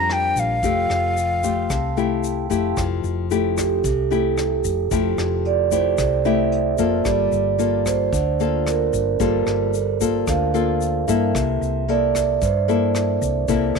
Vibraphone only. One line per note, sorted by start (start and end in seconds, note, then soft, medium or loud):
0.00 0.58 D4 soft
0.00 0.59 A#4 soft
0.00 0.60 C5 soft
0.00 0.60 G5 soft
0.62 2.73 A4 soft
0.62 1.96 G5 soft
0.62 2.74 E6 soft
1.43 1.68 C6 soft
1.70 1.95 A5 medium
1.97 2.22 G5 soft
2.24 2.73 F5 soft
3.32 3.57 A4 medium
3.57 4.07 G4 medium
4.11 4.37 A4 medium
5.46 5.72 D5 medium
5.72 6.22 C5 medium
6.25 6.41 E5 medium
7.07 7.83 D5 soft
7.86 8.62 C5 medium
8.67 9.17 A#4 medium
9.21 9.46 A4 medium
10.28 11.04 F5 medium
11.08 11.84 E5 medium
11.89 12.38 D5 medium
12.43 12.58 C5 medium